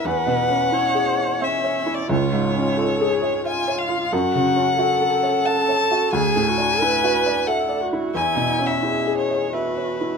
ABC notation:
X:1
M:3/4
L:1/16
Q:1/4=89
K:Emix
V:1 name="Violin"
f8 e3 d | c8 g2 ^e2 | f8 a4 | g8 f2 z2 |
g3 e3 c2 B4 |]
V:2 name="Viola"
B4 c4 C4 | ^E4 A2 G2 E4 | F4 A8 | G2 F2 B4 A2 F2 |
E4 G4 F4 |]
V:3 name="Felt piano"
(3E,,2 B,,2 C2 (3E2 G2 c2 (3e2 c2 E2 | (3C,,2 G,,2 C2 (3^E2 G2 c2 (3^e2 c2 E2 | (3F,,2 C,2 C2 (3F2 A2 c2 (3f2 c2 F2 | (3D,,2 A,,2 D2 (3E2 F2 d2 (3e2 d2 E2 |
(3E,,2 B,,2 C2 (3E2 G2 c2 (3e2 c2 E2 |]